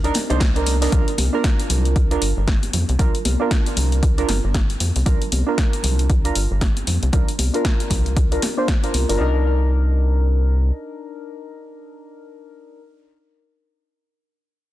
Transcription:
Already playing: C2
0.04 D4 D#4 A#4, closed hi-hat
0.14 snare, closed hi-hat, open hi-hat, high conga
0.30 C2 D4 D#4 C5, closed hi-hat, high bongo
0.40 kick, snare, closed hi-hat
0.56 D4 D#4 A#4, closed hi-hat, high bongo
0.66 closed hi-hat, open hi-hat, high conga
0.81 D4 D#4 A#4, snare, open hi-hat
0.92 C2 D4 F4 A#4, kick, closed hi-hat, low conga
1.08 closed hi-hat
1.18 C2, open hi-hat, high conga
1.33 D4 F4 A#4
1.44 kick, snare, closed hi-hat
1.60 closed hi-hat
1.70 C2, open hi-hat, low conga
1.85 closed hi-hat
1.96 kick, closed hi-hat
2.11 D4 F4 A#4, closed hi-hat
2.22 G1, open hi-hat
2.37 G1
2.48 kick, snare, closed hi-hat
2.63 closed hi-hat, high conga
2.73 F2, open hi-hat, low conga
2.89 C2, closed hi-hat
2.99 C2 D4 F4 A#4, kick, closed hi-hat, low conga
3.15 closed hi-hat
3.25 C2, open hi-hat, high conga
3.40 D4 F4 A#4
3.51 kick, snare, closed hi-hat
3.66 closed hi-hat
3.76 C2, open hi-hat, low conga
3.92 closed hi-hat
4.03 kick, closed hi-hat
4.18 D4 F4 A#4, closed hi-hat
4.29 G1, snare, open hi-hat, high conga
4.44 G1
4.54 kick, snare, closed hi-hat
4.70 closed hi-hat
4.80 F2, open hi-hat, high conga
4.96 C2, open hi-hat
5.06 C2 D4 F4 A#4, kick, closed hi-hat, low conga
5.22 closed hi-hat
5.32 C2, open hi-hat, high conga
5.47 D4 F4 A#4
5.58 kick, snare, closed hi-hat
5.73 closed hi-hat
5.83 C2, open hi-hat, low conga
5.99 closed hi-hat
6.10 kick, closed hi-hat
6.25 D4 F4 A#4, closed hi-hat
6.35 G1, open hi-hat
6.51 G1
6.61 kick, snare, closed hi-hat
6.77 closed hi-hat, high conga
6.87 F2, open hi-hat, low conga
7.03 C2, closed hi-hat
7.13 C2 D4 F4 A#4, kick, closed hi-hat, low conga
7.28 closed hi-hat
7.39 C2, open hi-hat, high conga
7.53 D4 F4 A#4, closed hi-hat
7.65 kick, snare, closed hi-hat
7.80 closed hi-hat
7.90 C2, kick, open hi-hat, low conga
8.06 closed hi-hat
8.17 kick, closed hi-hat
8.31 D4 F4 A#4, closed hi-hat
8.42 snare, open hi-hat, high conga
8.57 D4 F4 C5
8.68 kick, snare, closed hi-hat
8.83 D4 F4 A#4, closed hi-hat
8.94 C2, open hi-hat, high conga
9.09 G1 D4 F4 A#4, open hi-hat
9.19 C2 D4 D#4 A#4

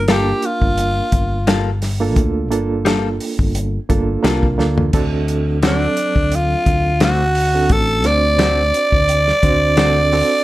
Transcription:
Already playing: G1
0.08 G3 A#3 D4 F4 G4 A4 A#4, snare, closed hi-hat
0.42 F4, closed hi-hat
0.61 G1, kick
0.78 closed hi-hat
1.12 G1, kick, closed hi-hat
1.47 G3 A#3 F4 A4, snare, closed hi-hat
1.82 snare, open hi-hat
2.00 A#3 D4 F4 A4
2.16 D2, kick, closed hi-hat
2.50 G1 A#3 D4 F4 A4, closed hi-hat
2.85 G3 A#3 F4 A4, snare, closed hi-hat
3.20 open hi-hat
3.39 G1, kick
3.55 closed hi-hat
3.89 G1 A#3 D4 F4 A4, kick, closed hi-hat
4.23 C2 G3 A#3 D4 F4 A4 A#4, snare, closed hi-hat
4.43 kick
4.58 D2 A#3 D4 F4 A4, snare
4.78 floor tom
4.93 D2 C4 D4 F#4 A4, kick, closed hi-hat, crash
5.28 closed hi-hat
5.63 D3 F#3 A3 C4 D4 F#4 A4, snare, closed hi-hat
5.97 closed hi-hat
6.16 D2, kick
6.32 F4, closed hi-hat
6.66 D2, kick, closed hi-hat
7.00 D3 A3 C4 F#4, snare, closed hi-hat
7.35 open hi-hat
7.54 C4 D4 F#4 A4
7.69 A1 A4, kick, closed hi-hat
8.04 D2 C4 D4 F#4 C5 D5, snare, closed hi-hat
8.38 D3 A3 C4 F#4, snare, closed hi-hat
8.74 closed hi-hat
8.92 D2, kick
9.09 closed hi-hat
9.28 snare
9.43 D2 C4 D4 F#4 C5, kick, closed hi-hat
9.77 D3 A3 C4 D4 F#4 A4, snare, closed hi-hat
10.12 C4 D4 F#4 A4, open hi-hat

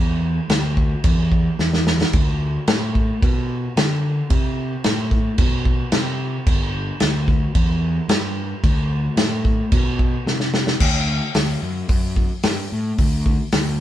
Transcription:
Already playing: E2
0.49 D2, snare, crash
0.77 kick
1.04 E2, kick, crash
1.32 kick
1.59 E2, snare
1.73 snare
1.87 snare
2.01 snare
2.13 D2, kick, crash
2.67 A2, snare, crash
2.95 kick
3.22 B2, kick, crash
3.77 D3, snare, crash
4.30 C3, kick, crash
4.84 A2, snare, crash
5.11 kick
5.38 B2, kick, crash
5.65 kick
5.92 C3, snare, crash
6.47 G1, kick, crash
7.00 D2, snare, crash
7.28 kick
7.55 E2, kick, crash
8.08 G2, snare, crash
8.63 D2, kick, crash
9.17 A2, snare, crash
9.45 kick
9.72 B2, kick, crash
9.99 kick
10.26 C3, snare
10.40 snare
10.54 snare
10.67 snare
10.80 D2, kick, crash
11.35 D2, snare, open hi-hat
11.62 F#2
11.89 F#2, kick, open hi-hat
12.16 kick
12.43 G2, snare, open hi-hat
12.72 A2
12.98 D2, kick, open hi-hat
13.26 kick
13.52 D2, snare, open hi-hat

